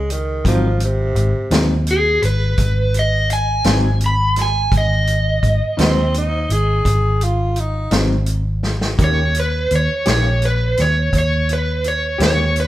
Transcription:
Already playing: fingered electric bass C#2, tenor saxophone G#3
0.10 tenor saxophone D#3, closed hi-hat
0.44 fingered electric bass G#1, clean electric guitar G#2 F#3 C4 D#4, tenor saxophone F3, kick, closed hi-hat
0.80 tenor saxophone C3, closed hi-hat
1.15 fingered electric bass G#1, closed hi-hat
1.51 fingered electric bass D#2, clean electric guitar G#2 F#3 C4 D#4, snare, closed hi-hat
1.87 closed hi-hat
1.91 electric slide guitar G#4
2.22 fingered electric bass G#1, electric slide guitar B4, closed hi-hat
2.58 fingered electric bass G#1, kick, closed hi-hat
2.94 closed hi-hat
2.99 electric slide guitar D#5
3.30 electric slide guitar G#5, closed hi-hat
3.64 fingered electric bass G#1, clean electric guitar G#2 F#3 C4 D#4, snare, closed hi-hat
4.00 closed hi-hat
4.06 electric slide guitar B5
4.36 snare, closed hi-hat
4.42 electric slide guitar G#5
4.72 fingered electric bass G#1, kick, closed hi-hat
4.77 electric slide guitar D#5
5.07 closed hi-hat
5.43 fingered electric bass G#1, kick, closed hi-hat
5.77 fingered electric bass D#2, clean electric guitar G#2 F#3 C4 D#4, tenor saxophone C4, snare, closed hi-hat
6.14 tenor saxophone D#4, closed hi-hat
6.49 fingered electric bass G#1, tenor saxophone G#4, closed hi-hat
6.85 fingered electric bass G#1, kick, closed hi-hat
7.21 tenor saxophone F4, closed hi-hat
7.56 tenor saxophone D#4, closed hi-hat
7.91 fingered electric bass G#1, clean electric guitar G#2 F#3 C4 D#4, snare, closed hi-hat
8.26 closed hi-hat
8.63 snare
8.81 snare
8.98 fingered electric bass D#2, clean electric guitar D#3 A#3 C#4 G4, kick, closed hi-hat
9.04 electric slide guitar C#5
9.35 closed hi-hat
9.40 electric slide guitar B4
9.71 fingered electric bass D#2, closed hi-hat
9.76 electric slide guitar C#5
10.05 fingered electric bass A#1, clean electric guitar D#3 A#3 C#4 G4, snare, closed hi-hat
10.10 electric slide guitar C#5
10.42 electric slide guitar B4, closed hi-hat
10.77 fingered electric bass D#2, snare, closed hi-hat
10.82 electric slide guitar C#5
11.13 fingered electric bass D#2, kick, closed hi-hat
11.18 electric slide guitar C#5
11.49 closed hi-hat
11.53 electric slide guitar B4
11.84 electric slide guitar C#5, closed hi-hat
12.18 fingered electric bass D#2, clean electric guitar D#3 A#3 C#4 G4, snare, closed hi-hat
12.23 electric slide guitar C#5
12.56 closed hi-hat
12.60 electric slide guitar B4

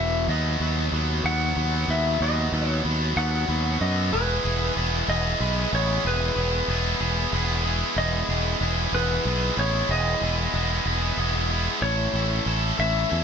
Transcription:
Already playing: fingered electric bass E1, distorted electric guitar E2 B2 E3, electric slide guitar E5
0.28 fingered electric bass D#2, distorted electric guitar B2 F#3 B3, electric slide guitar D#5
0.60 fingered electric bass D#2, distorted electric guitar B2 F#3 B3
0.92 fingered electric bass D#2, distorted electric guitar B2 F#3 B3
1.24 fingered electric bass D#2, distorted electric guitar B2 F#3 B3, electric slide guitar F#5
1.57 fingered electric bass D#2, distorted electric guitar B2 F#3 B3
1.88 fingered electric bass D#2, electric slide guitar E5
2.21 fingered electric bass D#2, distorted electric guitar B2 F#3 B3, electric slide guitar D#5
2.52 fingered electric bass D#2, distorted electric guitar B2 F#3 B3
2.67 electric slide guitar C#5
2.84 fingered electric bass D#2, distorted electric guitar B2 F#3 B3
3.16 fingered electric bass D#2, distorted electric guitar B2 F#3 B3, electric slide guitar F#5
3.49 fingered electric bass D#2, distorted electric guitar B2 F#3 B3
3.81 fingered electric bass F#2, electric slide guitar D#5
4.12 fingered electric bass E1, distorted electric guitar E3 G#3 B3 E4 G#4, electric slide guitar B4
4.44 fingered electric bass E1, distorted electric guitar B3 E4 G#4
4.76 fingered electric bass E1, distorted electric guitar G#3 B3 E4 G#4
5.08 fingered electric bass E1, distorted electric guitar B3 E4 G#4, electric slide guitar D#5
5.40 fingered electric bass B1, distorted electric guitar G#3 B3 E4 G#4
5.73 fingered electric bass A1, distorted electric guitar B3 E4 G#4, electric slide guitar C#5
6.04 fingered electric bass E1, distorted electric guitar E3 G#3 B3 E4 G#4, electric slide guitar B4
6.36 fingered electric bass E1, distorted electric guitar B3 E4 G#4
6.68 fingered electric bass E1, distorted electric guitar G#3 B3 E4 G#4
7.00 fingered electric bass E1, distorted electric guitar B3 E4 G#4
7.33 fingered electric bass E1, distorted electric guitar G#3 B3 E4 G#4
7.65 distorted electric guitar B3 E4 G#4
7.96 fingered electric bass E1, distorted electric guitar E3 G#3 B3 E4 G#4, electric slide guitar D#5
8.29 fingered electric bass E1, distorted electric guitar B3 E4 G#4
8.61 fingered electric bass E1, distorted electric guitar G#3 B3 E4 G#4
8.93 fingered electric bass E1, distorted electric guitar B3 E4 G#4, electric slide guitar B4
9.25 fingered electric bass B1, distorted electric guitar G#3 B3 E4 G#4
9.57 fingered electric bass A1, distorted electric guitar B3 E4 G#4, electric slide guitar C#5
9.89 fingered electric bass E1, distorted electric guitar E3 G#3 B3 E4 G#4, electric slide guitar D#5
10.21 fingered electric bass E1, distorted electric guitar B3 E4 G#4
10.54 fingered electric bass E1, distorted electric guitar G#3 B3 E4 G#4
10.86 fingered electric bass E1, distorted electric guitar B3 E4 G#4
11.17 fingered electric bass E1, distorted electric guitar G#3 B3 E4 G#4
11.50 distorted electric guitar B3 E4 G#4
11.82 fingered electric bass A1, distorted electric guitar A2 E3 A3 C#4 E4 A4, electric slide guitar C#5
12.14 fingered electric bass A1, distorted electric guitar A3 C#4 E4 A4
12.46 fingered electric bass A1, distorted electric guitar A3 C#4 E4 A4
12.78 fingered electric bass A1, distorted electric guitar A3 C#4 E4 A4, electric slide guitar E5
13.10 fingered electric bass E2, distorted electric guitar A3 C#4 E4 A4

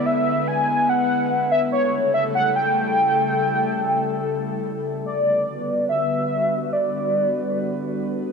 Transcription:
Already playing: ambient pad D3 G#3 B3 E4 B4
0.06 soft synth lead E5
0.48 soft synth lead G#5
0.89 soft synth lead F#5
1.52 soft synth lead E5
1.72 ambient pad C#3 G3 A3 A4, soft synth lead C#5
2.14 soft synth lead E5
2.35 soft synth lead F#5
2.56 soft synth lead G5
5.06 ambient pad D3 G3 B3 F#4 B4, soft synth lead D5
5.89 soft synth lead E5
6.73 soft synth lead D5

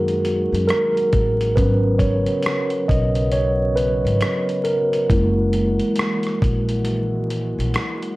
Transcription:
Already playing: upright bass F#2, ambient pad D#3 F#3 G#3 F#4, tine electric piano F#3 G#3 A#3 D#4 F#4 A#4
0.08 closed hi-hat
0.25 closed hi-hat
0.52 upright bass F#2, closed hi-hat
0.68 tine electric piano A#4, cross-stick, closed hi-hat
0.97 closed hi-hat
1.12 upright bass A1, kick, closed hi-hat
1.41 closed hi-hat
1.55 upright bass G#1, ambient pad C#3 B3, tine electric piano F#3 B3 C#4 A#4 B4, kick, closed hi-hat
1.99 tine electric piano C#5, kick, closed hi-hat
2.27 closed hi-hat
2.43 cross-stick, closed hi-hat
2.70 closed hi-hat
2.88 upright bass B1, tine electric piano D#5, kick, closed hi-hat
3.15 closed hi-hat
3.32 tine electric piano C#5, closed hi-hat
3.76 tine electric piano B4, closed hi-hat
4.05 upright bass G#1, closed hi-hat
4.21 cross-stick, closed hi-hat
4.49 closed hi-hat
4.64 tine electric piano A#4, closed hi-hat
4.93 closed hi-hat
5.09 upright bass F#1, ambient pad E3 G#3, tine electric piano G#3 A#3 E4, kick, closed hi-hat
5.53 closed hi-hat
5.80 closed hi-hat
5.96 cross-stick, closed hi-hat
6.23 cross-stick, closed hi-hat
6.42 upright bass A#1, kick, closed hi-hat
6.69 closed hi-hat
6.85 closed hi-hat
7.30 closed hi-hat
7.58 upright bass A#1, closed hi-hat
7.74 cross-stick, closed hi-hat
8.02 closed hi-hat

